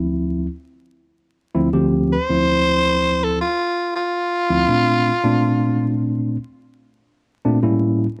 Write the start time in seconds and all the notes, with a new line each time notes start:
Already playing: D2 F3 C4 E4
1.55 D2 F3 C4 E4
1.73 D2 F3 C4 G4
2.13 C5
2.29 D2 F3 C4 E4
3.24 A4
3.41 F4
3.96 F4
4.50 D2 F3 C4 E4
4.68 A#2 A3 C4 D4
5.24 A#2 A3 C4 D4
7.45 A#2 A3 C4 D4
7.62 A2 G3 A#3 C#4 E4